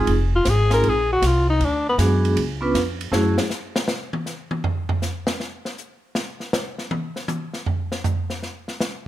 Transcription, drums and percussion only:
0.07 kick soft
0.07 ride medium
0.45 kick soft
0.45 snare medium
0.45 hi-hat pedal medium
0.45 ride medium
0.71 snare soft
0.71 ride soft
0.84 kick soft
0.84 ride medium
1.22 kick soft
1.22 snare medium
1.22 hi-hat pedal medium
1.22 ride medium
1.60 kick soft
1.60 ride medium
1.98 kick soft
1.98 snare medium
1.98 hi-hat pedal medium
1.98 ride medium
2.25 ride soft
2.37 kick soft
2.37 ride medium
2.75 kick soft
2.75 snare medium
2.75 hi-hat pedal medium
2.75 ride medium
3.01 ride soft
3.13 snare medium
3.38 snare medium
3.50 snare soft
3.50 hi-hat pedal medium
3.76 snare loud
3.88 snare medium
4.13 high tom medium
4.26 snare soft
4.26 hi-hat pedal medium
4.51 high tom medium
4.64 floor tom medium
4.89 floor tom loud
5.02 snare soft
5.02 hi-hat pedal medium
5.27 snare medium
5.40 snare soft
5.65 snare soft
5.78 hi-hat pedal medium
6.15 snare medium
6.40 snare soft
6.53 snare loud
6.53 hi-hat pedal medium
6.78 snare soft
6.91 high tom loud
7.16 snare soft
7.28 hi-hat pedal medium
7.28 high tom medium
7.54 snare soft
7.66 floor tom medium
7.92 snare soft
8.04 floor tom loud
8.04 hi-hat pedal medium
8.30 snare soft
8.43 snare soft
8.68 snare soft
8.81 snare medium
8.81 hi-hat pedal medium

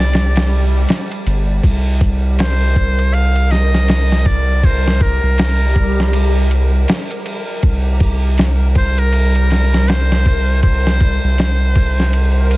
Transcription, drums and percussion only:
0.00 snare soft
0.13 snare loud
0.13 ride medium
0.13 shaker medium
0.36 snare loud
0.36 ride medium
0.36 shaker soft
0.50 shaker loud
0.74 shaker soft
0.89 snare loud
0.89 ride loud
0.89 shaker medium
1.11 ride soft
1.11 shaker soft
1.26 ride medium
1.26 shaker loud
1.50 shaker soft
1.63 kick loud
1.63 ride medium
1.63 shaker medium
1.88 shaker soft
2.01 kick loud
2.01 ride medium
2.01 shaker medium
2.26 shaker soft
2.39 snare loud
2.39 ride medium
2.39 shaker medium
2.62 shaker soft
2.76 kick medium
2.76 ride medium
2.76 shaker medium
2.99 ride soft
2.99 shaker soft
3.13 ride medium
3.13 shaker soft
3.36 ride soft
3.36 shaker soft
3.51 snare soft
3.51 ride medium
3.51 shaker loud
3.74 snare soft
3.74 shaker soft
3.88 snare loud
3.88 ride medium
3.88 shaker soft
4.12 snare soft
4.12 shaker soft
4.26 kick medium
4.26 ride medium
4.26 shaker loud
4.48 shaker soft
4.63 kick loud
4.63 ride medium
4.63 shaker medium
4.86 snare medium
4.86 shaker soft
5.01 kick loud
5.01 ride medium
5.01 shaker loud
5.25 shaker soft
5.38 snare loud
5.38 ride medium
5.38 shaker medium
5.63 shaker soft
5.76 kick medium
5.76 ride medium
5.76 shaker medium
5.99 snare soft
5.99 shaker soft
6.13 ride medium
6.13 shaker medium
6.36 shaker soft
6.51 ride medium
6.51 shaker medium
6.73 shaker soft
6.88 snare loud
6.88 ride medium
6.88 shaker soft
7.11 ride soft
7.11 shaker soft
7.25 ride medium
7.25 shaker medium
7.48 shaker soft
7.63 kick loud
7.63 ride medium
7.63 shaker medium
7.86 shaker soft
8.00 kick loud
8.00 ride medium
8.00 shaker medium
8.24 shaker soft
8.38 snare loud
8.38 ride medium
8.38 shaker soft
8.61 shaker soft
8.75 kick medium
8.75 ride medium
8.75 shaker medium
8.98 ride soft
8.98 shaker soft
9.13 ride medium
9.13 shaker medium
9.35 ride soft
9.35 shaker soft
9.50 snare soft
9.50 ride medium
9.50 shaker medium
9.73 snare soft
9.73 shaker soft
9.87 snare loud
9.87 ride medium
9.87 shaker soft
10.11 snare soft
10.11 shaker soft
10.26 kick medium
10.26 ride medium
10.26 shaker loud
10.48 shaker soft
10.62 kick loud
10.62 ride medium
10.62 shaker medium
10.86 snare medium
10.86 shaker soft
11.01 kick medium
11.01 ride medium
11.01 shaker medium
11.25 shaker soft
11.38 snare loud
11.38 ride medium
11.38 shaker soft
11.62 shaker soft
11.75 kick medium
11.75 ride medium
11.75 shaker medium
11.99 snare soft
11.99 shaker soft
12.13 ride medium
12.13 shaker soft
12.36 shaker soft
12.51 ride medium
12.51 shaker medium

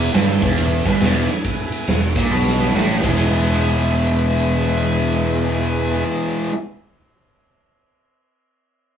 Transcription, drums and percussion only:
0.14 snare loud
0.14 ride loud
0.42 kick loud
0.42 ride medium
0.58 ride loud
0.85 kick loud
0.85 ride medium
1.01 snare loud
1.01 ride loud
1.29 ride medium
1.45 kick loud
1.45 ride loud
1.72 ride medium
1.87 snare loud
1.87 ride loud
2.16 kick loud
2.16 ride medium
2.33 snare medium
2.47 snare medium
2.60 snare medium
2.69 snare medium
2.77 snare medium
2.91 snare medium
3.03 kick loud
3.03 crash loud

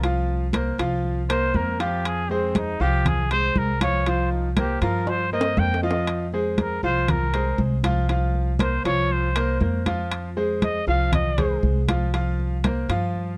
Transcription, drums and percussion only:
0.04 high conga soft
0.04 high timbale medium
0.28 high conga soft
0.53 high conga medium
0.53 high timbale medium
0.79 high conga soft
0.79 high timbale medium
1.04 high conga soft
1.29 high conga soft
1.29 high timbale loud
1.54 high conga medium
1.80 high timbale medium
2.05 high conga soft
2.05 high timbale medium
2.30 high conga soft
2.55 high conga loud
2.55 high timbale medium
2.80 high conga soft
3.05 high conga soft
3.05 low conga medium
3.05 high timbale medium
3.31 high conga soft
3.31 high timbale medium
3.56 high conga medium
3.81 high conga medium
3.81 high timbale loud
4.06 high conga soft
4.06 high timbale medium
4.31 high conga soft
4.57 high conga medium
4.57 high timbale medium
4.82 high conga soft
4.82 high timbale medium
5.07 high conga soft
5.07 high timbale medium
5.32 high conga soft
5.41 low timbale medium
5.57 high conga medium
5.57 low timbale medium
5.74 low timbale medium
5.91 low timbale medium
6.07 high conga soft
6.07 high timbale medium
6.33 high conga soft
6.58 high conga medium
6.58 high timbale medium
6.83 high conga soft
7.08 high conga soft
7.08 low conga medium
7.08 high timbale medium
7.33 high conga soft
7.33 high timbale medium
7.58 high conga medium
7.83 high conga medium
7.83 high timbale medium
8.09 high conga soft
8.09 high timbale medium
8.34 high conga soft
8.59 high conga loud
8.59 high timbale medium
8.85 high conga soft
8.85 high timbale medium
9.10 high conga soft
9.36 high conga soft
9.36 high timbale loud
9.61 high conga medium
9.86 high conga medium
9.86 high timbale medium
10.11 high conga soft
10.11 high timbale medium
10.37 high conga soft
10.62 high conga medium
10.62 high timbale medium
10.87 high conga soft
11.12 high conga soft
11.12 low conga medium
11.12 high timbale medium
11.38 high conga soft
11.38 low conga medium
11.38 high timbale medium
11.63 high conga medium
11.88 high conga medium
11.88 high timbale medium
12.14 high conga soft
12.14 high timbale medium
12.40 high conga soft
12.64 high conga medium
12.64 high timbale medium
12.90 high conga soft
12.90 high timbale medium
13.15 high conga soft

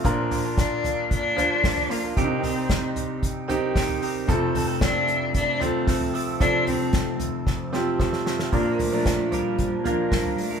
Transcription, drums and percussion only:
0.05 kick loud
0.05 hi-hat pedal medium
0.05 open hi-hat loud
0.31 floor tom medium
0.31 hi-hat pedal medium
0.31 open hi-hat medium
0.57 kick loud
0.57 snare loud
0.57 hi-hat pedal medium
0.57 open hi-hat medium
0.84 floor tom medium
0.84 hi-hat pedal medium
0.84 open hi-hat medium
1.11 kick loud
1.11 hi-hat pedal medium
1.11 open hi-hat medium
1.38 floor tom medium
1.38 hi-hat pedal medium
1.38 open hi-hat medium
1.64 kick loud
1.64 snare loud
1.64 hi-hat pedal medium
1.64 open hi-hat medium
1.78 floor tom medium
1.91 hi-hat pedal medium
1.91 open hi-hat medium
2.17 kick loud
2.17 hi-hat pedal medium
2.17 open hi-hat loud
2.43 floor tom medium
2.43 hi-hat pedal medium
2.43 open hi-hat medium
2.69 kick loud
2.69 snare loud
2.69 hi-hat pedal medium
2.69 open hi-hat loud
2.96 floor tom medium
2.96 hi-hat pedal medium
2.96 open hi-hat medium
3.23 kick medium
3.23 hi-hat pedal medium
3.23 open hi-hat medium
3.49 floor tom medium
3.49 hi-hat pedal medium
3.49 open hi-hat medium
3.76 kick loud
3.76 snare loud
3.76 hi-hat pedal medium
3.76 open hi-hat medium
3.89 floor tom medium
4.02 hi-hat pedal medium
4.02 open hi-hat medium
4.29 kick loud
4.29 hi-hat pedal medium
4.29 open hi-hat loud
4.55 floor tom medium
4.55 hi-hat pedal medium
4.55 open hi-hat medium
4.81 kick loud
4.81 snare loud
4.81 hi-hat pedal medium
4.81 open hi-hat loud
5.08 hi-hat pedal medium
5.08 open hi-hat medium
5.34 kick loud
5.34 hi-hat pedal medium
5.34 open hi-hat loud
5.61 floor tom medium
5.61 hi-hat pedal medium
5.61 open hi-hat medium
5.87 kick loud
5.87 snare loud
5.87 hi-hat pedal medium
5.87 open hi-hat medium
6.01 floor tom medium
6.14 hi-hat pedal medium
6.14 open hi-hat medium
6.41 kick loud
6.41 hi-hat pedal medium
6.41 open hi-hat loud
6.67 floor tom medium
6.67 hi-hat pedal medium
6.67 open hi-hat medium
6.93 kick loud
6.93 snare loud
6.93 hi-hat pedal medium
6.93 open hi-hat loud
7.20 floor tom medium
7.20 hi-hat pedal medium
7.20 open hi-hat medium
7.47 kick loud
7.47 snare medium
7.73 snare medium
8.00 kick loud
8.00 snare medium
8.13 snare medium
8.26 snare loud
8.39 snare loud
8.53 kick loud
8.53 open hi-hat loud
8.79 floor tom medium
8.79 hi-hat pedal medium
8.79 open hi-hat medium
9.05 kick loud
9.05 snare loud
9.05 hi-hat pedal medium
9.05 open hi-hat medium
9.32 floor tom medium
9.32 hi-hat pedal medium
9.32 open hi-hat medium
9.58 kick medium
9.58 hi-hat pedal medium
9.58 open hi-hat medium
9.85 floor tom medium
9.85 hi-hat pedal medium
9.85 open hi-hat medium
10.12 kick loud
10.12 snare medium
10.12 hi-hat pedal medium
10.12 open hi-hat medium
10.25 floor tom medium
10.38 hi-hat pedal medium
10.38 open hi-hat medium

